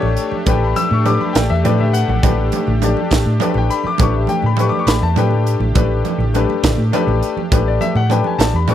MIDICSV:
0, 0, Header, 1, 6, 480
1, 0, Start_track
1, 0, Tempo, 587659
1, 379, Time_signature, 6, 3, 24, 8
1, 7142, End_track
2, 0, Start_track
2, 0, Title_t, "Grand piano"
2, 0, Program_c, 0, 0
2, 0, Note_on_c, 0, 57, 93
2, 0, Note_on_c, 0, 62, 79
2, 0, Note_on_c, 0, 67, 78
2, 0, Note_on_c, 0, 73, 108
2, 275, Note_off_c, 0, 57, 0
2, 276, Note_off_c, 0, 62, 0
2, 279, Note_off_c, 0, 67, 0
2, 282, Note_off_c, 0, 73, 0
2, 372, Note_on_c, 0, 57, 73
2, 379, Note_on_c, 0, 62, 64
2, 382, Note_on_c, 0, 67, 67
2, 389, Note_on_c, 0, 71, 84
2, 403, Note_on_c, 0, 79, 84
2, 508, Note_off_c, 0, 79, 0
2, 524, Note_on_c, 0, 83, 72
2, 624, Note_on_c, 0, 88, 120
2, 629, Note_off_c, 0, 83, 0
2, 738, Note_off_c, 0, 88, 0
2, 756, Note_off_c, 0, 57, 0
2, 756, Note_on_c, 0, 85, 84
2, 759, Note_off_c, 0, 62, 0
2, 761, Note_off_c, 0, 67, 0
2, 764, Note_off_c, 0, 71, 0
2, 851, Note_on_c, 0, 57, 68
2, 856, Note_on_c, 0, 62, 70
2, 861, Note_on_c, 0, 67, 66
2, 863, Note_on_c, 0, 71, 72
2, 865, Note_off_c, 0, 85, 0
2, 868, Note_on_c, 0, 86, 102
2, 981, Note_off_c, 0, 86, 0
2, 988, Note_on_c, 0, 83, 83
2, 1087, Note_on_c, 0, 79, 85
2, 1101, Note_off_c, 0, 83, 0
2, 1210, Note_off_c, 0, 79, 0
2, 1225, Note_on_c, 0, 76, 87
2, 1235, Note_off_c, 0, 57, 0
2, 1238, Note_off_c, 0, 62, 0
2, 1241, Note_off_c, 0, 67, 0
2, 1241, Note_off_c, 0, 71, 0
2, 1330, Note_on_c, 0, 57, 83
2, 1339, Note_off_c, 0, 76, 0
2, 1340, Note_on_c, 0, 62, 68
2, 1343, Note_on_c, 0, 67, 74
2, 1346, Note_on_c, 0, 71, 83
2, 1349, Note_on_c, 0, 74, 75
2, 1462, Note_off_c, 0, 74, 0
2, 1473, Note_on_c, 0, 76, 76
2, 1580, Note_on_c, 0, 78, 102
2, 1583, Note_off_c, 0, 76, 0
2, 1697, Note_off_c, 0, 78, 0
2, 1710, Note_on_c, 0, 78, 78
2, 1715, Note_off_c, 0, 57, 0
2, 1720, Note_off_c, 0, 62, 0
2, 1722, Note_off_c, 0, 67, 0
2, 1723, Note_off_c, 0, 71, 0
2, 1817, Note_on_c, 0, 57, 72
2, 1818, Note_on_c, 0, 62, 66
2, 1823, Note_on_c, 0, 67, 75
2, 1831, Note_on_c, 0, 71, 78
2, 2153, Note_off_c, 0, 78, 0
2, 2199, Note_off_c, 0, 57, 0
2, 2199, Note_off_c, 0, 62, 0
2, 2202, Note_off_c, 0, 67, 0
2, 2206, Note_off_c, 0, 71, 0
2, 2303, Note_on_c, 0, 57, 72
2, 2309, Note_on_c, 0, 62, 67
2, 2317, Note_on_c, 0, 67, 65
2, 2320, Note_on_c, 0, 74, 79
2, 2682, Note_off_c, 0, 57, 0
2, 2685, Note_off_c, 0, 62, 0
2, 2689, Note_off_c, 0, 67, 0
2, 2690, Note_off_c, 0, 74, 0
2, 2775, Note_on_c, 0, 57, 71
2, 2776, Note_on_c, 0, 62, 72
2, 2783, Note_on_c, 0, 67, 68
2, 2790, Note_on_c, 0, 71, 78
2, 2797, Note_on_c, 0, 74, 73
2, 2906, Note_off_c, 0, 74, 0
2, 2921, Note_on_c, 0, 79, 87
2, 3025, Note_on_c, 0, 83, 97
2, 3028, Note_off_c, 0, 79, 0
2, 3140, Note_off_c, 0, 83, 0
2, 3158, Note_off_c, 0, 57, 0
2, 3158, Note_off_c, 0, 62, 0
2, 3158, Note_on_c, 0, 86, 96
2, 3162, Note_off_c, 0, 67, 0
2, 3165, Note_off_c, 0, 71, 0
2, 3261, Note_on_c, 0, 57, 70
2, 3266, Note_off_c, 0, 86, 0
2, 3270, Note_on_c, 0, 62, 60
2, 3272, Note_on_c, 0, 67, 63
2, 3275, Note_on_c, 0, 71, 73
2, 3280, Note_on_c, 0, 85, 89
2, 3387, Note_off_c, 0, 85, 0
2, 3400, Note_on_c, 0, 76, 55
2, 3504, Note_on_c, 0, 79, 89
2, 3507, Note_off_c, 0, 76, 0
2, 3619, Note_off_c, 0, 79, 0
2, 3640, Note_off_c, 0, 57, 0
2, 3644, Note_on_c, 0, 83, 80
2, 3645, Note_off_c, 0, 62, 0
2, 3646, Note_off_c, 0, 67, 0
2, 3648, Note_off_c, 0, 71, 0
2, 3742, Note_on_c, 0, 57, 67
2, 3747, Note_on_c, 0, 62, 64
2, 3749, Note_off_c, 0, 83, 0
2, 3750, Note_on_c, 0, 67, 64
2, 3757, Note_on_c, 0, 71, 80
2, 3759, Note_on_c, 0, 85, 90
2, 3828, Note_off_c, 0, 85, 0
2, 3832, Note_on_c, 0, 86, 93
2, 3904, Note_off_c, 0, 86, 0
2, 3913, Note_on_c, 0, 85, 83
2, 3980, Note_on_c, 0, 83, 89
2, 3985, Note_off_c, 0, 85, 0
2, 4096, Note_off_c, 0, 83, 0
2, 4108, Note_on_c, 0, 81, 89
2, 4121, Note_off_c, 0, 57, 0
2, 4123, Note_off_c, 0, 62, 0
2, 4125, Note_off_c, 0, 67, 0
2, 4128, Note_off_c, 0, 71, 0
2, 4218, Note_on_c, 0, 57, 77
2, 4221, Note_off_c, 0, 81, 0
2, 4221, Note_on_c, 0, 62, 71
2, 4231, Note_on_c, 0, 67, 70
2, 4233, Note_on_c, 0, 71, 83
2, 4237, Note_on_c, 0, 79, 83
2, 4598, Note_off_c, 0, 57, 0
2, 4600, Note_off_c, 0, 62, 0
2, 4605, Note_off_c, 0, 67, 0
2, 4606, Note_off_c, 0, 71, 0
2, 4690, Note_on_c, 0, 57, 71
2, 4697, Note_on_c, 0, 62, 68
2, 4704, Note_on_c, 0, 67, 62
2, 4709, Note_on_c, 0, 71, 85
2, 5074, Note_off_c, 0, 57, 0
2, 5077, Note_off_c, 0, 62, 0
2, 5081, Note_off_c, 0, 67, 0
2, 5083, Note_off_c, 0, 71, 0
2, 5155, Note_off_c, 0, 79, 0
2, 5177, Note_on_c, 0, 57, 82
2, 5183, Note_on_c, 0, 62, 71
2, 5189, Note_on_c, 0, 67, 66
2, 5194, Note_on_c, 0, 71, 87
2, 5557, Note_off_c, 0, 57, 0
2, 5560, Note_off_c, 0, 62, 0
2, 5563, Note_off_c, 0, 67, 0
2, 5566, Note_off_c, 0, 71, 0
2, 5654, Note_on_c, 0, 57, 86
2, 5659, Note_on_c, 0, 62, 81
2, 5663, Note_on_c, 0, 67, 80
2, 5670, Note_on_c, 0, 71, 101
2, 6035, Note_off_c, 0, 57, 0
2, 6038, Note_off_c, 0, 62, 0
2, 6040, Note_off_c, 0, 67, 0
2, 6043, Note_off_c, 0, 71, 0
2, 6138, Note_on_c, 0, 57, 77
2, 6143, Note_on_c, 0, 62, 60
2, 6147, Note_on_c, 0, 67, 73
2, 6152, Note_on_c, 0, 71, 78
2, 6272, Note_on_c, 0, 74, 80
2, 6379, Note_on_c, 0, 76, 94
2, 6381, Note_off_c, 0, 74, 0
2, 6494, Note_off_c, 0, 76, 0
2, 6506, Note_on_c, 0, 78, 93
2, 6517, Note_off_c, 0, 57, 0
2, 6519, Note_off_c, 0, 62, 0
2, 6521, Note_off_c, 0, 67, 0
2, 6524, Note_off_c, 0, 71, 0
2, 6609, Note_on_c, 0, 57, 65
2, 6618, Note_off_c, 0, 78, 0
2, 6619, Note_on_c, 0, 62, 67
2, 6622, Note_on_c, 0, 67, 63
2, 6629, Note_on_c, 0, 71, 88
2, 6629, Note_on_c, 0, 79, 85
2, 6739, Note_off_c, 0, 79, 0
2, 6750, Note_on_c, 0, 80, 79
2, 6850, Note_on_c, 0, 81, 102
2, 6859, Note_off_c, 0, 80, 0
2, 6969, Note_off_c, 0, 81, 0
2, 6990, Note_on_c, 0, 83, 83
2, 6992, Note_off_c, 0, 57, 0
2, 6996, Note_off_c, 0, 62, 0
2, 6998, Note_off_c, 0, 67, 0
2, 7002, Note_off_c, 0, 71, 0
2, 7087, Note_on_c, 0, 57, 79
2, 7098, Note_on_c, 0, 67, 75
2, 7099, Note_off_c, 0, 83, 0
2, 7099, Note_on_c, 0, 62, 75
2, 7108, Note_on_c, 0, 85, 97
2, 7110, Note_on_c, 0, 71, 82
2, 7142, Note_off_c, 0, 57, 0
2, 7142, Note_off_c, 0, 62, 0
2, 7142, Note_off_c, 0, 67, 0
2, 7142, Note_off_c, 0, 71, 0
2, 7142, Note_off_c, 0, 85, 0
2, 7142, End_track
3, 0, Start_track
3, 0, Title_t, "Analog synth pad"
3, 0, Program_c, 1, 89
3, 0, Note_on_c, 1, 57, 80
3, 0, Note_on_c, 1, 62, 70
3, 0, Note_on_c, 1, 67, 86
3, 7142, Note_off_c, 1, 57, 0
3, 7142, Note_off_c, 1, 62, 0
3, 7142, Note_off_c, 1, 67, 0
3, 7142, End_track
4, 0, Start_track
4, 0, Title_t, "Fingered electric bass"
4, 0, Program_c, 2, 33
4, 23, Note_on_c, 2, 33, 91
4, 126, Note_off_c, 2, 33, 0
4, 379, Note_on_c, 2, 33, 107
4, 590, Note_off_c, 2, 33, 0
4, 744, Note_on_c, 2, 45, 81
4, 953, Note_off_c, 2, 45, 0
4, 1105, Note_on_c, 2, 33, 85
4, 1208, Note_off_c, 2, 33, 0
4, 1229, Note_on_c, 2, 40, 82
4, 1330, Note_off_c, 2, 40, 0
4, 1344, Note_on_c, 2, 45, 83
4, 1658, Note_off_c, 2, 45, 0
4, 1701, Note_on_c, 2, 33, 90
4, 1806, Note_off_c, 2, 33, 0
4, 1825, Note_on_c, 2, 33, 91
4, 2033, Note_off_c, 2, 33, 0
4, 2186, Note_on_c, 2, 33, 95
4, 2394, Note_off_c, 2, 33, 0
4, 2542, Note_on_c, 2, 33, 82
4, 2647, Note_off_c, 2, 33, 0
4, 2664, Note_on_c, 2, 45, 69
4, 2768, Note_off_c, 2, 45, 0
4, 2900, Note_on_c, 2, 33, 95
4, 3006, Note_off_c, 2, 33, 0
4, 3264, Note_on_c, 2, 33, 100
4, 3473, Note_off_c, 2, 33, 0
4, 3621, Note_on_c, 2, 45, 74
4, 3831, Note_off_c, 2, 45, 0
4, 3974, Note_on_c, 2, 33, 87
4, 4082, Note_off_c, 2, 33, 0
4, 4098, Note_on_c, 2, 40, 90
4, 4204, Note_off_c, 2, 40, 0
4, 4216, Note_on_c, 2, 45, 90
4, 4532, Note_off_c, 2, 45, 0
4, 4572, Note_on_c, 2, 33, 85
4, 4680, Note_off_c, 2, 33, 0
4, 4701, Note_on_c, 2, 33, 94
4, 4910, Note_off_c, 2, 33, 0
4, 5051, Note_on_c, 2, 33, 95
4, 5264, Note_off_c, 2, 33, 0
4, 5419, Note_on_c, 2, 33, 94
4, 5524, Note_off_c, 2, 33, 0
4, 5533, Note_on_c, 2, 45, 69
4, 5640, Note_off_c, 2, 45, 0
4, 5776, Note_on_c, 2, 33, 99
4, 5882, Note_off_c, 2, 33, 0
4, 6142, Note_on_c, 2, 33, 96
4, 6349, Note_off_c, 2, 33, 0
4, 6494, Note_on_c, 2, 45, 83
4, 6705, Note_off_c, 2, 45, 0
4, 6849, Note_on_c, 2, 33, 86
4, 6957, Note_off_c, 2, 33, 0
4, 6972, Note_on_c, 2, 40, 88
4, 7078, Note_off_c, 2, 40, 0
4, 7089, Note_on_c, 2, 45, 86
4, 7142, Note_off_c, 2, 45, 0
4, 7142, End_track
5, 0, Start_track
5, 0, Title_t, "Muted fingered electric bass strokes"
5, 262, Note_on_c, 9, 29, 37
5, 343, Note_off_c, 9, 29, 0
5, 3141, Note_on_c, 9, 29, 37
5, 3222, Note_off_c, 9, 29, 0
5, 6016, Note_on_c, 9, 29, 38
5, 6097, Note_off_c, 9, 29, 0
5, 7142, End_track
6, 0, Start_track
6, 0, Title_t, "Drums"
6, 18, Note_on_c, 9, 64, 68
6, 99, Note_off_c, 9, 64, 0
6, 136, Note_on_c, 9, 42, 57
6, 217, Note_off_c, 9, 42, 0
6, 257, Note_on_c, 9, 63, 64
6, 339, Note_off_c, 9, 63, 0
6, 378, Note_on_c, 9, 42, 77
6, 381, Note_on_c, 9, 36, 107
6, 381, Note_on_c, 9, 62, 78
6, 381, Note_on_c, 9, 64, 73
6, 460, Note_off_c, 9, 42, 0
6, 463, Note_off_c, 9, 36, 0
6, 463, Note_off_c, 9, 62, 0
6, 463, Note_off_c, 9, 64, 0
6, 622, Note_on_c, 9, 42, 54
6, 622, Note_on_c, 9, 63, 78
6, 704, Note_off_c, 9, 42, 0
6, 704, Note_off_c, 9, 63, 0
6, 742, Note_on_c, 9, 64, 66
6, 823, Note_off_c, 9, 64, 0
6, 862, Note_on_c, 9, 62, 80
6, 863, Note_on_c, 9, 42, 49
6, 944, Note_off_c, 9, 62, 0
6, 945, Note_off_c, 9, 42, 0
6, 987, Note_on_c, 9, 63, 70
6, 1069, Note_off_c, 9, 63, 0
6, 1104, Note_on_c, 9, 42, 73
6, 1107, Note_on_c, 9, 64, 84
6, 1112, Note_on_c, 9, 38, 107
6, 1186, Note_off_c, 9, 42, 0
6, 1188, Note_off_c, 9, 64, 0
6, 1193, Note_off_c, 9, 38, 0
6, 1347, Note_on_c, 9, 42, 61
6, 1348, Note_on_c, 9, 62, 86
6, 1348, Note_on_c, 9, 63, 82
6, 1348, Note_on_c, 9, 64, 29
6, 1428, Note_off_c, 9, 42, 0
6, 1430, Note_off_c, 9, 62, 0
6, 1430, Note_off_c, 9, 63, 0
6, 1430, Note_off_c, 9, 64, 0
6, 1470, Note_on_c, 9, 64, 68
6, 1552, Note_off_c, 9, 64, 0
6, 1586, Note_on_c, 9, 42, 60
6, 1668, Note_off_c, 9, 42, 0
6, 1710, Note_on_c, 9, 63, 75
6, 1791, Note_off_c, 9, 63, 0
6, 1823, Note_on_c, 9, 42, 82
6, 1824, Note_on_c, 9, 36, 106
6, 1827, Note_on_c, 9, 62, 94
6, 1827, Note_on_c, 9, 64, 83
6, 1904, Note_off_c, 9, 42, 0
6, 1906, Note_off_c, 9, 36, 0
6, 1908, Note_off_c, 9, 62, 0
6, 1908, Note_off_c, 9, 64, 0
6, 2058, Note_on_c, 9, 42, 58
6, 2066, Note_on_c, 9, 63, 89
6, 2140, Note_off_c, 9, 42, 0
6, 2148, Note_off_c, 9, 63, 0
6, 2182, Note_on_c, 9, 64, 70
6, 2264, Note_off_c, 9, 64, 0
6, 2302, Note_on_c, 9, 62, 93
6, 2302, Note_on_c, 9, 64, 29
6, 2307, Note_on_c, 9, 42, 62
6, 2384, Note_off_c, 9, 62, 0
6, 2384, Note_off_c, 9, 64, 0
6, 2388, Note_off_c, 9, 42, 0
6, 2425, Note_on_c, 9, 63, 73
6, 2506, Note_off_c, 9, 63, 0
6, 2538, Note_on_c, 9, 64, 80
6, 2544, Note_on_c, 9, 36, 78
6, 2546, Note_on_c, 9, 42, 81
6, 2554, Note_on_c, 9, 38, 112
6, 2620, Note_off_c, 9, 64, 0
6, 2625, Note_off_c, 9, 36, 0
6, 2628, Note_off_c, 9, 42, 0
6, 2635, Note_off_c, 9, 38, 0
6, 2777, Note_on_c, 9, 62, 100
6, 2777, Note_on_c, 9, 63, 100
6, 2777, Note_on_c, 9, 64, 30
6, 2789, Note_on_c, 9, 42, 62
6, 2858, Note_off_c, 9, 62, 0
6, 2858, Note_off_c, 9, 63, 0
6, 2858, Note_off_c, 9, 64, 0
6, 2870, Note_off_c, 9, 42, 0
6, 2893, Note_on_c, 9, 64, 78
6, 2975, Note_off_c, 9, 64, 0
6, 3027, Note_on_c, 9, 42, 59
6, 3109, Note_off_c, 9, 42, 0
6, 3132, Note_on_c, 9, 63, 64
6, 3132, Note_on_c, 9, 64, 31
6, 3214, Note_off_c, 9, 63, 0
6, 3214, Note_off_c, 9, 64, 0
6, 3252, Note_on_c, 9, 62, 94
6, 3252, Note_on_c, 9, 64, 88
6, 3262, Note_on_c, 9, 42, 87
6, 3264, Note_on_c, 9, 36, 115
6, 3334, Note_off_c, 9, 62, 0
6, 3334, Note_off_c, 9, 64, 0
6, 3344, Note_off_c, 9, 42, 0
6, 3346, Note_off_c, 9, 36, 0
6, 3489, Note_on_c, 9, 63, 90
6, 3503, Note_on_c, 9, 42, 52
6, 3571, Note_off_c, 9, 63, 0
6, 3584, Note_off_c, 9, 42, 0
6, 3613, Note_on_c, 9, 64, 69
6, 3695, Note_off_c, 9, 64, 0
6, 3730, Note_on_c, 9, 62, 95
6, 3748, Note_on_c, 9, 42, 55
6, 3812, Note_off_c, 9, 62, 0
6, 3830, Note_off_c, 9, 42, 0
6, 3854, Note_on_c, 9, 63, 73
6, 3936, Note_off_c, 9, 63, 0
6, 3977, Note_on_c, 9, 64, 91
6, 3981, Note_on_c, 9, 42, 76
6, 3989, Note_on_c, 9, 38, 110
6, 4059, Note_off_c, 9, 64, 0
6, 4063, Note_off_c, 9, 42, 0
6, 4070, Note_off_c, 9, 38, 0
6, 4097, Note_on_c, 9, 64, 26
6, 4179, Note_off_c, 9, 64, 0
6, 4216, Note_on_c, 9, 62, 95
6, 4216, Note_on_c, 9, 63, 78
6, 4216, Note_on_c, 9, 64, 28
6, 4225, Note_on_c, 9, 42, 55
6, 4298, Note_off_c, 9, 62, 0
6, 4298, Note_off_c, 9, 63, 0
6, 4298, Note_off_c, 9, 64, 0
6, 4307, Note_off_c, 9, 42, 0
6, 4334, Note_on_c, 9, 64, 60
6, 4416, Note_off_c, 9, 64, 0
6, 4465, Note_on_c, 9, 42, 57
6, 4547, Note_off_c, 9, 42, 0
6, 4578, Note_on_c, 9, 63, 59
6, 4660, Note_off_c, 9, 63, 0
6, 4699, Note_on_c, 9, 62, 85
6, 4699, Note_on_c, 9, 64, 79
6, 4700, Note_on_c, 9, 42, 81
6, 4702, Note_on_c, 9, 36, 109
6, 4781, Note_off_c, 9, 62, 0
6, 4781, Note_off_c, 9, 64, 0
6, 4782, Note_off_c, 9, 42, 0
6, 4783, Note_off_c, 9, 36, 0
6, 4940, Note_on_c, 9, 42, 49
6, 4942, Note_on_c, 9, 63, 95
6, 5022, Note_off_c, 9, 42, 0
6, 5023, Note_off_c, 9, 63, 0
6, 5067, Note_on_c, 9, 64, 65
6, 5149, Note_off_c, 9, 64, 0
6, 5183, Note_on_c, 9, 42, 55
6, 5187, Note_on_c, 9, 62, 85
6, 5264, Note_off_c, 9, 42, 0
6, 5269, Note_off_c, 9, 62, 0
6, 5306, Note_on_c, 9, 63, 62
6, 5387, Note_off_c, 9, 63, 0
6, 5419, Note_on_c, 9, 64, 95
6, 5420, Note_on_c, 9, 42, 84
6, 5421, Note_on_c, 9, 36, 83
6, 5427, Note_on_c, 9, 38, 116
6, 5501, Note_off_c, 9, 42, 0
6, 5501, Note_off_c, 9, 64, 0
6, 5503, Note_off_c, 9, 36, 0
6, 5509, Note_off_c, 9, 38, 0
6, 5549, Note_on_c, 9, 64, 27
6, 5630, Note_off_c, 9, 64, 0
6, 5663, Note_on_c, 9, 62, 93
6, 5663, Note_on_c, 9, 63, 88
6, 5663, Note_on_c, 9, 64, 28
6, 5664, Note_on_c, 9, 42, 61
6, 5744, Note_off_c, 9, 62, 0
6, 5744, Note_off_c, 9, 63, 0
6, 5744, Note_off_c, 9, 64, 0
6, 5746, Note_off_c, 9, 42, 0
6, 5785, Note_on_c, 9, 64, 72
6, 5867, Note_off_c, 9, 64, 0
6, 5902, Note_on_c, 9, 42, 63
6, 5984, Note_off_c, 9, 42, 0
6, 6022, Note_on_c, 9, 63, 74
6, 6104, Note_off_c, 9, 63, 0
6, 6141, Note_on_c, 9, 36, 115
6, 6141, Note_on_c, 9, 42, 91
6, 6141, Note_on_c, 9, 62, 97
6, 6141, Note_on_c, 9, 64, 93
6, 6222, Note_off_c, 9, 42, 0
6, 6222, Note_off_c, 9, 62, 0
6, 6222, Note_off_c, 9, 64, 0
6, 6223, Note_off_c, 9, 36, 0
6, 6377, Note_on_c, 9, 63, 88
6, 6385, Note_on_c, 9, 42, 56
6, 6459, Note_off_c, 9, 63, 0
6, 6466, Note_off_c, 9, 42, 0
6, 6498, Note_on_c, 9, 64, 69
6, 6580, Note_off_c, 9, 64, 0
6, 6614, Note_on_c, 9, 62, 86
6, 6624, Note_on_c, 9, 42, 59
6, 6696, Note_off_c, 9, 62, 0
6, 6705, Note_off_c, 9, 42, 0
6, 6733, Note_on_c, 9, 63, 76
6, 6815, Note_off_c, 9, 63, 0
6, 6857, Note_on_c, 9, 64, 100
6, 6862, Note_on_c, 9, 42, 83
6, 6869, Note_on_c, 9, 38, 122
6, 6938, Note_off_c, 9, 64, 0
6, 6944, Note_off_c, 9, 42, 0
6, 6951, Note_off_c, 9, 38, 0
6, 6973, Note_on_c, 9, 64, 29
6, 7054, Note_off_c, 9, 64, 0
6, 7087, Note_on_c, 9, 62, 96
6, 7087, Note_on_c, 9, 63, 91
6, 7087, Note_on_c, 9, 64, 28
6, 7095, Note_on_c, 9, 42, 58
6, 7142, Note_off_c, 9, 42, 0
6, 7142, Note_off_c, 9, 62, 0
6, 7142, Note_off_c, 9, 63, 0
6, 7142, Note_off_c, 9, 64, 0
6, 7142, End_track
0, 0, End_of_file